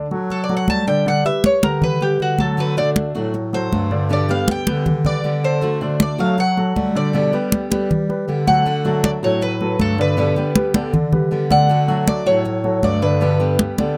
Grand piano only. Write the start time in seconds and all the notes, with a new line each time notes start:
0.11 F#3 F#4 A4
0.49 F#3 F#4 A4
0.87 D3 D4 D5
1.06 D3 D4 D5
1.25 G3 G4 B4
1.63 G3 G4 B4
2.02 G3 G4 B4
2.39 F#3 F#4 A4
2.77 D3 D4 D5
3.16 F#3 F#4 A4
3.53 F#3 F#4 A4
3.91 D3 D4 D5
4.11 D3 D4 D5
4.30 G3 G4 B4
4.67 G3 G4 B4
5.06 G3 G4 B4
5.44 A4
5.81 D3 D4 D5
6.19 F#3 F#4 A4
6.57 F#3 F#4 A4
6.95 D3 D4 D5
7.14 D3 D4 D5
7.33 G3 G4 B4
7.71 G3 G4 B4
8.09 G3 G4 B4
8.47 F#3 F#4 A4
8.85 F#3 F#4 A4
9.23 F#3 F#4 A4
9.61 F#3 F#4 A4
9.99 D3 D4 D5
10.18 D3 D4 D5
10.56 G3 G4 B4
10.75 D3 D4 D5
11.12 G3 G4 B4
11.50 D3 D4 D5
11.88 F#3 F#4 A4
12.26 F#3 F#4 A4
12.64 F#3 F#4 A4
13.02 D3 D4 D5
13.21 D3 D4 D5
13.59 G3 G4 B4
13.78 D3 D4 D5